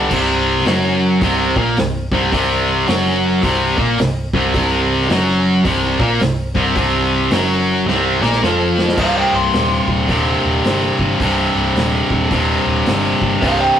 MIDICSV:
0, 0, Header, 1, 5, 480
1, 0, Start_track
1, 0, Tempo, 555042
1, 97, Time_signature, 4, 2, 24, 8
1, 11931, End_track
2, 0, Start_track
2, 0, Title_t, "Electric slide guitar"
2, 0, Program_c, 0, 29
2, 7766, Note_on_c, 0, 72, 86
2, 7775, Note_on_c, 0, 77, 107
2, 7926, Note_off_c, 0, 72, 0
2, 7926, Note_off_c, 0, 77, 0
2, 7930, Note_on_c, 0, 75, 71
2, 7940, Note_on_c, 0, 79, 74
2, 8083, Note_on_c, 0, 84, 85
2, 8089, Note_off_c, 0, 75, 0
2, 8089, Note_off_c, 0, 79, 0
2, 9018, Note_off_c, 0, 84, 0
2, 11603, Note_on_c, 0, 72, 88
2, 11607, Note_on_c, 0, 77, 90
2, 11762, Note_off_c, 0, 77, 0
2, 11762, Note_on_c, 0, 75, 84
2, 11766, Note_on_c, 0, 79, 93
2, 11771, Note_off_c, 0, 72, 0
2, 11919, Note_off_c, 0, 75, 0
2, 11928, Note_off_c, 0, 79, 0
2, 11931, End_track
3, 0, Start_track
3, 0, Title_t, "Distorted electric guitar"
3, 0, Program_c, 1, 30
3, 0, Note_on_c, 1, 50, 81
3, 0, Note_on_c, 1, 55, 71
3, 88, Note_off_c, 1, 50, 0
3, 91, Note_off_c, 1, 55, 0
3, 99, Note_on_c, 1, 36, 92
3, 107, Note_on_c, 1, 48, 113
3, 571, Note_off_c, 1, 36, 0
3, 575, Note_on_c, 1, 42, 96
3, 577, Note_off_c, 1, 48, 0
3, 582, Note_on_c, 1, 54, 98
3, 1050, Note_off_c, 1, 42, 0
3, 1054, Note_off_c, 1, 54, 0
3, 1057, Note_on_c, 1, 36, 93
3, 1063, Note_on_c, 1, 48, 112
3, 1349, Note_off_c, 1, 36, 0
3, 1352, Note_off_c, 1, 48, 0
3, 1357, Note_on_c, 1, 46, 81
3, 1361, Note_on_c, 1, 58, 80
3, 1531, Note_off_c, 1, 46, 0
3, 1533, Note_off_c, 1, 58, 0
3, 1537, Note_on_c, 1, 36, 73
3, 1777, Note_off_c, 1, 36, 0
3, 1833, Note_on_c, 1, 36, 76
3, 1841, Note_on_c, 1, 48, 86
3, 1997, Note_off_c, 1, 36, 0
3, 2005, Note_off_c, 1, 48, 0
3, 2007, Note_on_c, 1, 36, 94
3, 2016, Note_on_c, 1, 48, 110
3, 2484, Note_off_c, 1, 36, 0
3, 2488, Note_on_c, 1, 42, 98
3, 2489, Note_off_c, 1, 48, 0
3, 2496, Note_on_c, 1, 54, 116
3, 2960, Note_off_c, 1, 42, 0
3, 2963, Note_on_c, 1, 36, 89
3, 2968, Note_off_c, 1, 54, 0
3, 2972, Note_on_c, 1, 48, 97
3, 3259, Note_off_c, 1, 36, 0
3, 3264, Note_off_c, 1, 48, 0
3, 3268, Note_on_c, 1, 46, 78
3, 3274, Note_on_c, 1, 58, 87
3, 3444, Note_off_c, 1, 46, 0
3, 3447, Note_off_c, 1, 58, 0
3, 3450, Note_on_c, 1, 36, 72
3, 3691, Note_off_c, 1, 36, 0
3, 3751, Note_on_c, 1, 36, 81
3, 3756, Note_on_c, 1, 48, 88
3, 3919, Note_off_c, 1, 36, 0
3, 3925, Note_off_c, 1, 48, 0
3, 3929, Note_on_c, 1, 36, 96
3, 3935, Note_on_c, 1, 48, 113
3, 4404, Note_off_c, 1, 36, 0
3, 4406, Note_off_c, 1, 48, 0
3, 4407, Note_on_c, 1, 42, 96
3, 4413, Note_on_c, 1, 54, 105
3, 4882, Note_off_c, 1, 42, 0
3, 4885, Note_off_c, 1, 54, 0
3, 4887, Note_on_c, 1, 36, 99
3, 4897, Note_on_c, 1, 48, 101
3, 5179, Note_off_c, 1, 36, 0
3, 5184, Note_off_c, 1, 48, 0
3, 5187, Note_on_c, 1, 46, 82
3, 5192, Note_on_c, 1, 58, 90
3, 5361, Note_off_c, 1, 46, 0
3, 5364, Note_off_c, 1, 58, 0
3, 5366, Note_on_c, 1, 36, 69
3, 5607, Note_off_c, 1, 36, 0
3, 5661, Note_on_c, 1, 36, 75
3, 5667, Note_on_c, 1, 48, 88
3, 5835, Note_off_c, 1, 36, 0
3, 5841, Note_off_c, 1, 48, 0
3, 5846, Note_on_c, 1, 36, 92
3, 5855, Note_on_c, 1, 48, 96
3, 6320, Note_off_c, 1, 36, 0
3, 6325, Note_off_c, 1, 48, 0
3, 6326, Note_on_c, 1, 42, 85
3, 6332, Note_on_c, 1, 54, 108
3, 6800, Note_off_c, 1, 42, 0
3, 6803, Note_off_c, 1, 54, 0
3, 6804, Note_on_c, 1, 36, 92
3, 6812, Note_on_c, 1, 48, 108
3, 7097, Note_off_c, 1, 36, 0
3, 7101, Note_off_c, 1, 48, 0
3, 7101, Note_on_c, 1, 46, 81
3, 7111, Note_on_c, 1, 58, 101
3, 7278, Note_off_c, 1, 46, 0
3, 7282, Note_off_c, 1, 58, 0
3, 7284, Note_on_c, 1, 41, 89
3, 7291, Note_on_c, 1, 53, 95
3, 7752, Note_off_c, 1, 41, 0
3, 7755, Note_on_c, 1, 36, 86
3, 7764, Note_off_c, 1, 53, 0
3, 7772, Note_on_c, 1, 43, 82
3, 7786, Note_on_c, 1, 48, 87
3, 8711, Note_off_c, 1, 36, 0
3, 8715, Note_on_c, 1, 36, 77
3, 8720, Note_off_c, 1, 43, 0
3, 8730, Note_on_c, 1, 43, 84
3, 8736, Note_off_c, 1, 48, 0
3, 8740, Note_on_c, 1, 48, 83
3, 9668, Note_off_c, 1, 36, 0
3, 9671, Note_on_c, 1, 36, 86
3, 9678, Note_off_c, 1, 43, 0
3, 9689, Note_on_c, 1, 43, 88
3, 9700, Note_off_c, 1, 48, 0
3, 9703, Note_on_c, 1, 48, 97
3, 10637, Note_off_c, 1, 36, 0
3, 10641, Note_on_c, 1, 36, 78
3, 10642, Note_off_c, 1, 43, 0
3, 10657, Note_on_c, 1, 43, 86
3, 10665, Note_off_c, 1, 48, 0
3, 10668, Note_on_c, 1, 48, 79
3, 11598, Note_off_c, 1, 36, 0
3, 11602, Note_on_c, 1, 36, 89
3, 11606, Note_off_c, 1, 43, 0
3, 11616, Note_on_c, 1, 43, 86
3, 11628, Note_off_c, 1, 48, 0
3, 11632, Note_on_c, 1, 48, 98
3, 11931, Note_off_c, 1, 36, 0
3, 11931, Note_off_c, 1, 43, 0
3, 11931, Note_off_c, 1, 48, 0
3, 11931, End_track
4, 0, Start_track
4, 0, Title_t, "Picked electric bass"
4, 0, Program_c, 2, 34
4, 92, Note_on_c, 2, 24, 99
4, 541, Note_off_c, 2, 24, 0
4, 575, Note_on_c, 2, 30, 80
4, 1022, Note_off_c, 2, 30, 0
4, 1052, Note_on_c, 2, 24, 84
4, 1334, Note_off_c, 2, 24, 0
4, 1352, Note_on_c, 2, 34, 95
4, 1521, Note_off_c, 2, 34, 0
4, 1538, Note_on_c, 2, 24, 78
4, 1817, Note_off_c, 2, 24, 0
4, 1832, Note_on_c, 2, 24, 88
4, 2000, Note_off_c, 2, 24, 0
4, 2015, Note_on_c, 2, 24, 103
4, 2460, Note_off_c, 2, 24, 0
4, 2502, Note_on_c, 2, 30, 93
4, 2943, Note_off_c, 2, 30, 0
4, 2968, Note_on_c, 2, 24, 89
4, 3250, Note_off_c, 2, 24, 0
4, 3265, Note_on_c, 2, 34, 85
4, 3435, Note_off_c, 2, 34, 0
4, 3446, Note_on_c, 2, 24, 77
4, 3728, Note_off_c, 2, 24, 0
4, 3748, Note_on_c, 2, 24, 87
4, 3916, Note_off_c, 2, 24, 0
4, 3931, Note_on_c, 2, 24, 101
4, 4376, Note_off_c, 2, 24, 0
4, 4409, Note_on_c, 2, 30, 89
4, 4855, Note_off_c, 2, 30, 0
4, 4888, Note_on_c, 2, 24, 83
4, 5168, Note_off_c, 2, 24, 0
4, 5186, Note_on_c, 2, 34, 98
4, 5354, Note_off_c, 2, 34, 0
4, 5368, Note_on_c, 2, 24, 75
4, 5648, Note_off_c, 2, 24, 0
4, 5666, Note_on_c, 2, 24, 89
4, 5834, Note_off_c, 2, 24, 0
4, 5848, Note_on_c, 2, 24, 100
4, 6294, Note_off_c, 2, 24, 0
4, 6326, Note_on_c, 2, 30, 89
4, 6772, Note_off_c, 2, 30, 0
4, 6797, Note_on_c, 2, 24, 87
4, 7081, Note_off_c, 2, 24, 0
4, 7100, Note_on_c, 2, 34, 91
4, 7270, Note_off_c, 2, 34, 0
4, 7292, Note_on_c, 2, 29, 80
4, 7736, Note_off_c, 2, 29, 0
4, 7765, Note_on_c, 2, 24, 89
4, 7985, Note_off_c, 2, 24, 0
4, 8069, Note_on_c, 2, 24, 87
4, 8199, Note_off_c, 2, 24, 0
4, 8252, Note_on_c, 2, 27, 85
4, 8470, Note_off_c, 2, 27, 0
4, 8544, Note_on_c, 2, 27, 83
4, 8676, Note_off_c, 2, 27, 0
4, 8724, Note_on_c, 2, 27, 83
4, 8945, Note_off_c, 2, 27, 0
4, 9033, Note_on_c, 2, 27, 82
4, 9162, Note_off_c, 2, 27, 0
4, 9209, Note_on_c, 2, 31, 78
4, 9429, Note_off_c, 2, 31, 0
4, 9509, Note_on_c, 2, 31, 78
4, 9640, Note_off_c, 2, 31, 0
4, 9688, Note_on_c, 2, 24, 84
4, 9909, Note_off_c, 2, 24, 0
4, 9990, Note_on_c, 2, 24, 88
4, 10121, Note_off_c, 2, 24, 0
4, 10159, Note_on_c, 2, 27, 82
4, 10383, Note_off_c, 2, 27, 0
4, 10468, Note_on_c, 2, 27, 87
4, 10601, Note_off_c, 2, 27, 0
4, 10647, Note_on_c, 2, 27, 81
4, 10869, Note_off_c, 2, 27, 0
4, 10951, Note_on_c, 2, 27, 78
4, 11083, Note_off_c, 2, 27, 0
4, 11140, Note_on_c, 2, 31, 85
4, 11359, Note_off_c, 2, 31, 0
4, 11430, Note_on_c, 2, 31, 77
4, 11564, Note_off_c, 2, 31, 0
4, 11611, Note_on_c, 2, 24, 94
4, 11833, Note_off_c, 2, 24, 0
4, 11931, End_track
5, 0, Start_track
5, 0, Title_t, "Drums"
5, 93, Note_on_c, 9, 49, 111
5, 94, Note_on_c, 9, 36, 99
5, 180, Note_off_c, 9, 36, 0
5, 180, Note_off_c, 9, 49, 0
5, 499, Note_on_c, 9, 38, 29
5, 565, Note_on_c, 9, 46, 51
5, 576, Note_off_c, 9, 38, 0
5, 576, Note_on_c, 9, 38, 101
5, 652, Note_off_c, 9, 46, 0
5, 663, Note_off_c, 9, 38, 0
5, 1050, Note_on_c, 9, 36, 106
5, 1051, Note_on_c, 9, 46, 56
5, 1137, Note_off_c, 9, 36, 0
5, 1138, Note_off_c, 9, 46, 0
5, 1351, Note_on_c, 9, 36, 108
5, 1437, Note_off_c, 9, 36, 0
5, 1531, Note_on_c, 9, 46, 53
5, 1542, Note_on_c, 9, 38, 102
5, 1618, Note_off_c, 9, 46, 0
5, 1629, Note_off_c, 9, 38, 0
5, 1829, Note_on_c, 9, 36, 102
5, 1916, Note_off_c, 9, 36, 0
5, 2010, Note_on_c, 9, 36, 97
5, 2017, Note_on_c, 9, 46, 60
5, 2096, Note_off_c, 9, 36, 0
5, 2104, Note_off_c, 9, 46, 0
5, 2488, Note_on_c, 9, 46, 61
5, 2499, Note_on_c, 9, 38, 99
5, 2574, Note_off_c, 9, 46, 0
5, 2585, Note_off_c, 9, 38, 0
5, 2967, Note_on_c, 9, 36, 96
5, 2967, Note_on_c, 9, 46, 59
5, 3054, Note_off_c, 9, 36, 0
5, 3054, Note_off_c, 9, 46, 0
5, 3267, Note_on_c, 9, 36, 103
5, 3354, Note_off_c, 9, 36, 0
5, 3448, Note_on_c, 9, 46, 53
5, 3459, Note_on_c, 9, 38, 107
5, 3534, Note_off_c, 9, 46, 0
5, 3545, Note_off_c, 9, 38, 0
5, 3749, Note_on_c, 9, 36, 100
5, 3835, Note_off_c, 9, 36, 0
5, 3925, Note_on_c, 9, 46, 57
5, 3927, Note_on_c, 9, 36, 102
5, 4011, Note_off_c, 9, 46, 0
5, 4014, Note_off_c, 9, 36, 0
5, 4335, Note_on_c, 9, 38, 31
5, 4408, Note_on_c, 9, 46, 52
5, 4420, Note_off_c, 9, 38, 0
5, 4420, Note_on_c, 9, 38, 105
5, 4495, Note_off_c, 9, 46, 0
5, 4506, Note_off_c, 9, 38, 0
5, 4886, Note_on_c, 9, 36, 102
5, 4887, Note_on_c, 9, 46, 52
5, 4972, Note_off_c, 9, 36, 0
5, 4973, Note_off_c, 9, 46, 0
5, 5186, Note_on_c, 9, 36, 114
5, 5272, Note_off_c, 9, 36, 0
5, 5362, Note_on_c, 9, 46, 56
5, 5373, Note_on_c, 9, 38, 100
5, 5449, Note_off_c, 9, 46, 0
5, 5460, Note_off_c, 9, 38, 0
5, 5665, Note_on_c, 9, 36, 105
5, 5751, Note_off_c, 9, 36, 0
5, 5844, Note_on_c, 9, 36, 104
5, 5844, Note_on_c, 9, 46, 57
5, 5930, Note_off_c, 9, 36, 0
5, 5930, Note_off_c, 9, 46, 0
5, 6319, Note_on_c, 9, 46, 55
5, 6330, Note_on_c, 9, 38, 103
5, 6405, Note_off_c, 9, 46, 0
5, 6416, Note_off_c, 9, 38, 0
5, 6818, Note_on_c, 9, 38, 58
5, 6904, Note_off_c, 9, 38, 0
5, 7116, Note_on_c, 9, 38, 74
5, 7200, Note_off_c, 9, 38, 0
5, 7200, Note_on_c, 9, 38, 66
5, 7286, Note_off_c, 9, 38, 0
5, 7295, Note_on_c, 9, 38, 88
5, 7382, Note_off_c, 9, 38, 0
5, 7598, Note_on_c, 9, 38, 95
5, 7684, Note_off_c, 9, 38, 0
5, 7686, Note_on_c, 9, 38, 97
5, 7761, Note_on_c, 9, 36, 101
5, 7762, Note_on_c, 9, 49, 108
5, 7773, Note_off_c, 9, 38, 0
5, 7848, Note_off_c, 9, 36, 0
5, 7849, Note_off_c, 9, 49, 0
5, 8241, Note_on_c, 9, 46, 51
5, 8252, Note_on_c, 9, 38, 90
5, 8327, Note_off_c, 9, 46, 0
5, 8339, Note_off_c, 9, 38, 0
5, 8541, Note_on_c, 9, 36, 76
5, 8628, Note_off_c, 9, 36, 0
5, 8721, Note_on_c, 9, 36, 79
5, 8723, Note_on_c, 9, 46, 52
5, 8808, Note_off_c, 9, 36, 0
5, 8810, Note_off_c, 9, 46, 0
5, 9204, Note_on_c, 9, 46, 50
5, 9216, Note_on_c, 9, 38, 96
5, 9291, Note_off_c, 9, 46, 0
5, 9302, Note_off_c, 9, 38, 0
5, 9506, Note_on_c, 9, 36, 82
5, 9592, Note_off_c, 9, 36, 0
5, 9686, Note_on_c, 9, 36, 100
5, 9694, Note_on_c, 9, 46, 55
5, 9772, Note_off_c, 9, 36, 0
5, 9780, Note_off_c, 9, 46, 0
5, 10174, Note_on_c, 9, 46, 55
5, 10185, Note_on_c, 9, 38, 98
5, 10260, Note_off_c, 9, 46, 0
5, 10271, Note_off_c, 9, 38, 0
5, 10467, Note_on_c, 9, 36, 77
5, 10553, Note_off_c, 9, 36, 0
5, 10644, Note_on_c, 9, 46, 51
5, 10645, Note_on_c, 9, 36, 86
5, 10730, Note_off_c, 9, 46, 0
5, 10732, Note_off_c, 9, 36, 0
5, 11123, Note_on_c, 9, 46, 58
5, 11134, Note_on_c, 9, 38, 98
5, 11209, Note_off_c, 9, 46, 0
5, 11220, Note_off_c, 9, 38, 0
5, 11429, Note_on_c, 9, 36, 78
5, 11515, Note_off_c, 9, 36, 0
5, 11608, Note_on_c, 9, 36, 106
5, 11610, Note_on_c, 9, 46, 51
5, 11695, Note_off_c, 9, 36, 0
5, 11696, Note_off_c, 9, 46, 0
5, 11931, End_track
0, 0, End_of_file